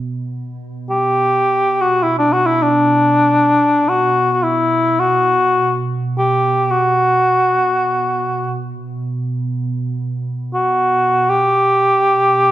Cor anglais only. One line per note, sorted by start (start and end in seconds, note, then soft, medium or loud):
0.90 1.83 G4 medium
1.81 2.04 F#4 medium
2.03 2.18 E4 medium
2.19 2.34 D4 medium
2.33 2.48 F#4 medium
2.46 2.63 E4 medium
2.62 3.91 D4 medium
3.89 4.32 F#4 medium
4.32 4.45 F#4 medium
4.43 5.01 E4 medium
5.00 5.85 F#4 medium
6.18 6.72 G4 medium
6.71 8.63 F#4 medium
10.54 11.31 F#4 medium
11.30 12.52 G4 medium